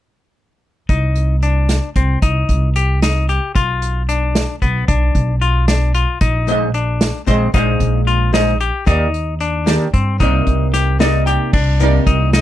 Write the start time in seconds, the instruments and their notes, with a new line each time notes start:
0.89 upright bass C2, clean electric guitar D#4, kick, closed hi-hat
1.16 closed hi-hat
1.43 clean electric guitar D4, closed hi-hat
1.69 snare, closed hi-hat
1.96 upright bass C2, clean electric guitar C4, kick, closed hi-hat
2.22 upright bass C2, clean electric guitar D#4, kick, closed hi-hat
2.49 upright bass C2, kick, closed hi-hat
2.76 clean electric guitar G4, closed hi-hat
3.02 clean electric guitar D#4, snare, closed hi-hat
3.29 clean electric guitar G4, closed hi-hat
3.55 upright bass B1, clean electric guitar F4, kick, closed hi-hat
3.82 closed hi-hat
4.09 clean electric guitar D4, closed hi-hat
4.35 snare, closed hi-hat
4.62 upright bass B1, clean electric guitar B3, kick, closed hi-hat
4.88 upright bass B1, clean electric guitar D4, kick, closed hi-hat
5.15 upright bass B1, kick, closed hi-hat
5.41 clean electric guitar F4, closed hi-hat
5.68 clean electric guitar D4, snare, closed hi-hat
5.94 clean electric guitar F4, closed hi-hat
6.21 upright bass A#1, clean electric guitar D#4, kick, closed hi-hat
6.47 hollow-body jazz guitar A#2 G#3 C5 D#5, closed hi-hat
6.74 clean electric guitar D4, closed hi-hat
7.01 snare, closed hi-hat
7.26 upright bass A#1, hollow-body jazz guitar A#2 G#3 C5 D#5, clean electric guitar C4, kick, closed hi-hat
7.54 upright bass A#1, hollow-body jazz guitar A#2 G#3 C5 F5, clean electric guitar D#4, kick, closed hi-hat
7.80 upright bass A#1, kick, closed hi-hat
8.07 clean electric guitar F4, closed hi-hat
8.33 hollow-body jazz guitar A#2 G#3 C5 D#5, clean electric guitar D#4, snare, closed hi-hat
8.60 clean electric guitar G4, closed hi-hat
8.86 upright bass D#2, hollow-body jazz guitar D#3 A#3 G4 D5, clean electric guitar D#4, kick, closed hi-hat
9.14 closed hi-hat
9.40 clean electric guitar D4, closed hi-hat
9.66 hollow-body jazz guitar D#3 A#3 G4 D5, snare, closed hi-hat
9.94 upright bass G2, clean electric guitar C4, kick, closed hi-hat
10.20 upright bass C2, hollow-body jazz guitar C3 A#3 D#4 D5, clean electric guitar D#4, kick, closed hi-hat
10.47 upright bass C2, kick, closed hi-hat
10.74 clean electric guitar G4, snare, closed hi-hat
10.99 hollow-body jazz guitar C3 A#3 D#4 D5 D#5, clean electric guitar D#4, snare, closed hi-hat
11.26 clean electric guitar G4, hollow-body jazz guitar G5, closed hi-hat
11.53 upright bass C2, clean electric guitar D4, kick, crash
11.79 hollow-body jazz guitar C3 A#3 D#4 D5, closed hi-hat
12.07 upright bass C2, clean electric guitar D#4, kick, closed hi-hat
12.33 clean electric guitar D#4, snare, closed hi-hat